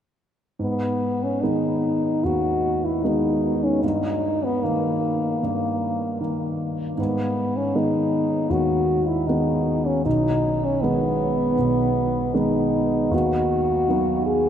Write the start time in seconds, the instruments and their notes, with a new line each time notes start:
0.59 grand piano G#2, french horn B3
1.23 french horn C#4
1.43 grand piano D#3 G#3 B3, french horn D#4
2.24 grand piano D#2, french horn F#4
2.85 french horn E4
3.04 grand piano D#3 G#3 B3, french horn D#4
3.64 french horn C#4
3.83 grand piano G2, french horn D#4
4.44 french horn B3
4.64 grand piano D#3 A#3, french horn A#3
5.43 grand piano G2
6.20 grand piano D#3 A#3
6.97 grand piano G#2, french horn B3
7.56 french horn C#4
7.75 grand piano D#3 G#3 B3, french horn D#4
8.50 grand piano D#2, french horn F#4
9.07 french horn E4
9.27 grand piano D#3 G#3 B3, french horn D#4
9.87 french horn C#4
10.05 grand piano B1, french horn D#4
10.64 french horn C#4
10.82 grand piano D#3 G#3 B3, french horn B3
11.59 grand piano B1
12.33 grand piano D#3 G#3 B3, french horn D#4
13.11 grand piano D#2, french horn F#4
13.88 grand piano D#3 F#3 B3
14.26 french horn G#4